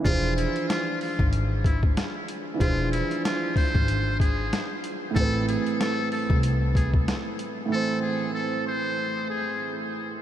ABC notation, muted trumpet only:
X:1
M:4/4
L:1/16
Q:"Swing 16ths" 1/4=94
K:Ephr
V:1 name="Muted trumpet"
F2 E2 F2 F2 z2 E z4 z | F2 E2 F2 c4 ^G3 z3 | A2 ^G2 A2 A2 z2 G z4 z | A2 ^G2 A2 c4 G3 z3 |]